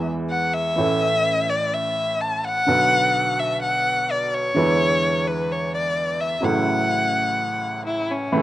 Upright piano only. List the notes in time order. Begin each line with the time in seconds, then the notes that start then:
Already playing: E2 E3 G#3 B3 G#4
0.76 A1 A2 E3 A3 C#4 A4
2.67 B1 B2 D3 F#3 B3 F#4
4.54 E2 D3 E3 G#3 B3
4.58 E4
6.41 A1 A2 C#3 F#3 A3
6.45 E4
8.32 A1 A2 C#3 E3 A3 E4